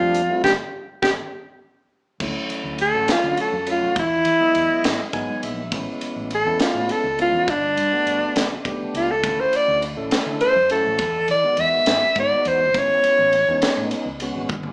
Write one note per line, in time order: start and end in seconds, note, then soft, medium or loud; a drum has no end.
0.00 0.28 F2 medium
0.00 0.22 G3 medium
0.00 0.22 A3 medium
0.00 0.22 C4 medium
0.00 0.22 D4 loud
0.00 0.43 F4 loud
0.15 closed hi-hat medium
0.29 0.44 G3 medium
0.29 0.44 A3 medium
0.29 0.45 C4 medium
0.29 0.45 E4 medium
0.44 0.55 G1 loud
0.44 0.54 G3 loud
0.44 0.54 B3 medium
0.44 0.54 D4 medium
0.44 0.51 G4 loud
0.44 kick medium
0.44 snare medium
1.02 1.14 G1 medium
1.02 1.12 G3 medium
1.02 1.13 B3 medium
1.02 1.13 D4 medium
1.02 1.10 G4 medium
1.02 kick loud
1.02 snare medium
2.20 2.34 D2 medium
2.20 2.82 F#3 medium
2.20 2.82 A3 medium
2.20 2.82 C#4 medium
2.20 2.82 E4 medium
2.20 kick medium
2.20 crash medium
2.50 muted fretless electric bass stroke soft
2.50 ride medium
2.64 2.92 D2 medium
2.78 3.09 A4 loud
2.78 ride medium
2.94 3.08 A1 medium
2.94 3.56 F#3 medium
2.94 3.56 A3 medium
2.94 3.55 C#4 medium
2.94 3.56 F#4 medium
3.08 3.38 F4 medium
3.08 snare loud
3.08 ride medium
3.24 3.37 D3 medium
3.37 3.68 A4 medium
3.37 ride medium
3.53 3.80 F#2 medium
3.67 3.97 F#3 medium
3.67 3.97 A3 medium
3.67 3.97 C#4 medium
3.67 3.97 F#4 medium
3.67 ride medium
3.71 3.98 F4 medium
3.82 3.96 B1 medium
3.96 4.24 E2 loud
3.96 5.12 E4 loud
3.96 kick loud
3.96 ride medium
4.25 4.40 E3 medium
4.25 ride medium
4.41 5.02 F#3 medium
4.41 5.02 G#3 medium
4.41 5.02 B3 medium
4.41 5.02 D#5 medium
4.41 muted fretless electric bass stroke soft
4.55 4.69 E2 medium
4.55 ride medium
4.84 4.98 G#2 medium
4.84 snare loud
4.84 ride loud
4.99 muted fretless electric bass stroke soft
5.13 5.27 G#2 medium
5.13 5.63 F#3 medium
5.13 5.63 G#3 medium
5.13 5.63 B3 medium
5.13 5.63 D#4 loud
5.13 5.41 G#5 medium
5.13 kick medium
5.13 ride medium
5.43 5.72 A#1 medium
5.43 5.71 E5 medium
5.43 ride medium
5.72 5.86 A1 medium
5.72 6.34 G#3 medium
5.72 6.34 B3 medium
5.72 6.34 C#4 medium
5.72 6.34 E4 medium
5.72 kick loud
5.72 ride medium
6.01 muted fretless electric bass stroke soft
6.01 ride medium
6.16 6.44 A1 medium
6.31 ride medium
6.35 6.61 A4 medium
6.45 6.59 E2 medium
6.45 7.07 G#3 medium
6.45 7.07 B3 medium
6.45 7.07 C#4 medium
6.45 7.07 E4 medium
6.59 6.93 F4 medium
6.59 snare loud
6.59 ride medium
6.74 6.88 A2 medium
6.89 7.19 A4 medium
6.89 ride medium
7.04 7.32 C#2 medium
7.19 7.48 G#3 medium
7.19 7.48 B3 medium
7.19 7.48 C#4 medium
7.19 7.48 E4 medium
7.19 7.52 F4 medium
7.19 ride medium
7.32 7.47 E2 medium
7.48 7.76 G1 loud
7.48 8.63 D4 loud
7.48 kick medium
7.48 ride medium
7.77 7.91 G2 medium
7.77 ride medium
7.92 8.54 A3 medium
7.92 8.53 B3 medium
7.92 8.53 D4 medium
7.92 8.54 F#4 medium
7.92 muted fretless electric bass stroke soft
8.06 8.20 G1 medium
8.06 ride medium
8.36 8.49 B1 medium
8.36 snare loud
8.36 ride medium
8.50 muted fretless electric bass stroke soft
8.65 8.79 B1 medium
8.65 9.14 A3 medium
8.65 9.14 B3 medium
8.65 9.14 D4 medium
8.65 9.14 G4 loud
8.65 kick medium
8.65 ride medium
8.94 9.24 C#2 medium
8.94 9.12 F4 medium
8.94 ride medium
9.11 9.42 A4 medium
9.24 9.38 D2 loud
9.24 9.85 A3 medium
9.24 9.85 C#4 medium
9.24 9.85 E4 medium
9.24 9.85 F#4 medium
9.24 kick loud
9.24 ride medium
9.40 9.57 C5 medium
9.52 9.83 D5 loud
9.52 muted fretless electric bass stroke soft
9.52 ride medium
9.68 9.96 D2 medium
9.82 ride medium
9.96 10.11 A1 medium
9.96 10.58 A3 medium
9.96 10.58 C#4 medium
9.96 10.58 E4 medium
9.96 10.58 A4 medium
10.11 snare loud
10.11 ride loud
10.26 10.40 D3 medium
10.41 10.69 C5 loud
10.41 ride medium
10.56 10.83 F#2 medium
10.70 11.00 A3 medium
10.70 11.00 C#4 medium
10.70 11.00 E4 medium
10.70 11.00 F#4 medium
10.70 11.27 A4 medium
10.70 ride medium
10.85 10.98 A1 medium
10.98 11.27 E2 loud
10.98 kick loud
10.98 ride medium
11.28 11.42 E3 medium
11.28 11.62 D5 loud
11.28 ride medium
11.44 12.04 D#3 medium
11.44 12.04 G#3 medium
11.44 12.04 B3 medium
11.44 12.05 F#4 medium
11.44 muted fretless electric bass stroke soft
11.57 11.72 E2 medium
11.57 12.16 E5 medium
11.57 ride medium
11.86 12.01 G#2 medium
11.86 snare loud
11.86 ride medium
12.02 muted fretless electric bass stroke soft
12.16 12.30 G#2 loud
12.16 12.66 G#3 medium
12.16 12.66 B3 medium
12.16 12.66 D#4 medium
12.16 12.66 F#4 medium
12.16 kick medium
12.16 ride medium
12.20 12.49 D5 loud
12.45 12.74 E2 medium
12.45 12.80 C5 medium
12.45 ride medium
12.74 12.88 A1 loud
12.74 13.36 G#3 medium
12.74 13.36 B3 medium
12.74 13.36 C#4 medium
12.74 13.36 E4 medium
12.74 13.90 C#5 loud
12.74 kick loud
12.74 ride medium
13.04 muted fretless electric bass stroke soft
13.04 ride medium
13.19 13.46 A1 medium
13.33 ride medium
13.48 13.62 E2 medium
13.48 14.09 G#3 medium
13.48 14.09 B3 medium
13.48 14.09 C#4 medium
13.48 14.09 D#4 loud
13.62 snare loud
13.62 ride medium
13.77 13.91 A2 medium
13.91 ride medium
14.05 14.33 C#2 medium
14.20 14.50 G#3 loud
14.20 14.50 B3 medium
14.20 14.50 C#4 medium
14.20 14.50 F#4 loud
14.20 ride medium
14.35 14.49 G#1 loud
14.49 14.73 G1 loud
14.49 kick loud
14.49 high tom medium
14.63 high tom medium